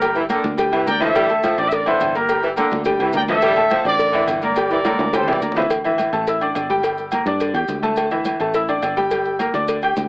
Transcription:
Already playing: G1 G4 A#4
0.01 G3 G4 G5, cowbell, high conga, low agogo, maracas
0.15 E3, high conga, maracas
0.29 D3 A#3 A#4 A#5, cowbell, high conga, low agogo, maracas
0.43 D2, cowbell, high conga, maracas
0.57 G3 G4 G5, cowbell, high conga, low agogo, maracas
0.72 C2 E3, high conga, low agogo, maracas
0.86 D2 A#3 A#4 D5 G5 A#5, cowbell, high conga, maracas
1.00 E3 F3 E4 A4 E5, cowbell, high conga, low agogo, maracas
1.15 G3, cowbell, low agogo, maracas
1.29 A3 A4 A5, high conga, low agogo, maracas
1.43 F3, cowbell, high conga, low agogo, maracas
1.58 A1 D4 A#4 D5 D6, low agogo, maracas
1.66 E5
1.71 A#4 D5, cowbell, high conga, maracas
1.86 D3 E3 E4 A4 C5 E5, high conga, low agogo, maracas
2.00 G1, cowbell, high conga, low timbale, low agogo, maracas
2.14 A#3 G4 A#4 A#5, cowbell, maracas
2.29 G3 G4 G5, cowbell, high conga, low agogo, maracas
2.43 E3, high conga, maracas
2.56 D3 A#3 A#4 A#5, cowbell, high conga, low agogo, maracas
2.71 D2, cowbell, high conga, maracas
2.85 G3 G4 G5, cowbell, low agogo, maracas
2.99 C2 E3, high conga, low agogo, maracas
3.13 D2 A#3 A#4 D5 G5 A#5, cowbell, high conga, maracas
3.28 E3 F3 E4 A4 E5, cowbell, high conga, low agogo, maracas
3.42 G3, cowbell, low agogo, maracas
3.56 A3 A4 A5, high conga, low agogo, maracas
3.70 F3, cowbell, high conga, low agogo, maracas
3.85 A1 D4 A#4 D5 D6, low agogo, maracas
3.99 cowbell, high conga, maracas
4.13 D3 E3 E4 E5, high conga, low agogo, maracas
4.28 G1, cowbell, high conga, low timbale, low agogo, maracas
4.42 A#3 A#4 D5 A#5, cowbell, high conga, maracas
4.56 G3 G4 G5, cowbell, high conga, low agogo, maracas
4.70 E3 A#4 D5, high conga, maracas
4.85 D3 A#3 A#4 A#5, cowbell, high conga, high timbale, low agogo, maracas
4.94 high conga
4.99 D2, cowbell, high timbale, maracas
5.04 high conga
5.13 G3 G4 A4 C5 G5, cowbell, high timbale, low agogo, maracas
5.23 E3, low conga
5.28 C2 A#4 D5, low timbale, low agogo, maracas
5.33 low conga
5.42 D2 A#3 A#4 A#5, cowbell, maracas
5.52 F3, low conga
5.56 E3 E4 E5, cowbell, low timbale, low agogo, maracas
5.62 low conga
5.70 cowbell, high conga, low agogo, maracas
5.84 E3 E4 E5, high conga, low agogo, maracas
5.98 cowbell, high conga, low agogo, maracas
6.13 A1 A3 A4 A5, low agogo, maracas
6.27 E4 E5 E6, cowbell, high conga, maracas
6.41 D4 D5 D6, high conga, low agogo, maracas
6.55 G1, cowbell, high conga, low timbale, low agogo, maracas
6.70 G3 G4 G5, cowbell, high conga, maracas
6.83 G3 G4 G5, cowbell, low agogo, maracas
6.98 high conga, maracas
7.11 A#3 A#4 A#5, cowbell, high conga, low agogo, maracas
7.26 G2 D4 D5 D6, cowbell, high conga, maracas
7.40 cowbell, high conga, low agogo, maracas
7.54 E2 G4 G5 G6, high conga, low agogo, maracas
7.68 D2, cowbell, high conga, maracas
7.83 A3 A4 A5, cowbell, high conga, low agogo, maracas
7.96 cowbell, high conga, low agogo, maracas
8.11 E3 E4 E5, high conga, low agogo, maracas
8.25 cowbell, high conga, low agogo, maracas
8.39 A1 A3 A4 A5, high conga, low agogo, maracas
8.54 E4 E5 E6, cowbell, high conga, maracas
8.68 D4 D5 D6, high conga, low agogo, maracas
8.82 G1, cowbell, high conga, low timbale, low agogo, maracas
8.97 G3 G4 G5, cowbell, high conga, maracas
9.11 G3 G4 G5, cowbell, high conga, low agogo, maracas
9.25 high conga, maracas
9.39 A#3 A#4 A#5, cowbell, high conga, low agogo, maracas
9.54 D2 D4 D5 D6, cowbell, high conga, maracas
9.68 cowbell, high conga, low agogo, maracas
9.82 G4 G5 G6, high conga, low agogo, maracas
9.96 D2, cowbell, high conga, maracas

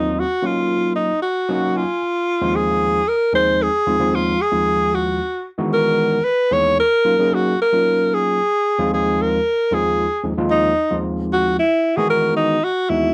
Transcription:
Already playing: D#2 F#3 A#3 C4 D#4 F4
0.20 F#4
0.42 F#3 A#3 C#4 D#4 F4
0.95 D#4
1.22 F#4
1.49 F#3 A#3 C#4 D#4 F#4 F#5
1.76 F4 G#5
2.41 D#2 F3 G#3 C4 D#4 F4
2.56 G#4
3.08 A#4
3.33 D#2 F3 G#3 C4 D#4 G#4 C5
3.63 G#4
3.87 D#2 F3 G#3 C4 D#4 F4
4.00 D#2 F3 G#3 C4 D#4 F4
4.15 F4
4.41 G#4
4.52 D#2 F3 G#3 C4 D#4 F4
4.95 F#4
5.58 D#3 E3 G#3 B3 D#4 F#4
5.73 A#4
6.24 B4
6.51 D#2 E3 G#3 B3 D#4 G#4 C#5
6.80 A#4
7.05 F#3 A#3 C#4 D#4 F4
7.19 F#3 A#3 C#4 D#4 G#4
7.34 F#4
7.62 A#4
7.73 F#3 A#3 C#4 D#4 F4
8.14 G#4
8.79 D#2 F3 G#3 C4 D#4 F4
8.94 G#4
9.22 A#4
9.71 D#2 F3 G#3 C4 D#4 F4 G#4
10.24 D#2 F3 G#3 C4 D#4 G#4
10.37 D#2 F3 G#3 C4 D#4 F4
10.50 D#4
10.91 D#2 F3 G#3 C4 D#4 F4
11.33 F#4
11.59 E4
11.97 D#3 E3 G#3 B3 D#4 F#4 G#4
12.10 A#4
12.36 D#4
12.64 F#4
12.89 D#2 E3 G#3 B3 D#4 E4 F#4

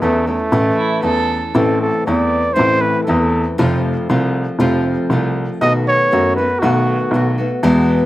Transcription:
0.02 E2 E3 A3 C#4 E4
0.27 A3 C#4 E4
0.52 A1 A2 E3 A3 C#4 E4
0.77 E4
1.02 E2 E3 A3 C#4 E4 A4
1.54 A1 A2 E3 A3 C4 E4 A4
1.82 A4
2.06 E2 E3 A3 C4 E4 D5
2.53 A2 E3 A3 C4 E4 C5
2.59 A1
2.81 B4
3.04 E3 A3 C4 A4
3.08 E2 E4
3.14 B4
3.21 A4
3.58 F1 F2 C3 F3 A3 C4 F4
4.09 C2 F3 A3 C4 F4
4.59 F1 F2 C3 F3 A3 C4 F4
5.10 C2 F3 A3 C4 F4
5.61 B1 B2 D#3 A3 B3 F#4 D#5
5.88 C#5
6.11 F#2 D#3 A3 B3 F#4
6.36 A3 B3 F#4 B4
6.59 B1 B2 D#3 A3 B3 F#4
6.64 F#4
7.11 B1 D#3 A3 B3
7.15 F#4
7.38 A3 B3 F#4
7.63 E2 B2 E3 G#3 B3 E4

